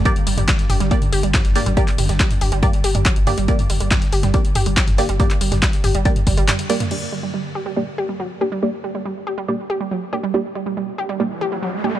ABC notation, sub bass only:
X:1
M:4/4
L:1/16
Q:1/4=140
K:Gm
V:1 name="Sub bass" clef=bass
z2 G,,, G,,, z2 G,,, G,,, z2 G,,, G,,, z G,,, z G,,, | z2 G,,, G,,, z2 G,,, G,,, z2 G,,, G,,, z G,,, z G,,, | z2 G,,, G,,, z2 G,,, G,,, z2 G,,, G,,, z G,,, z G,,, | z2 G,,, G,,, z2 G,,, G,,, z2 G,,, G,,, z4 |
z16 | z16 | z16 |]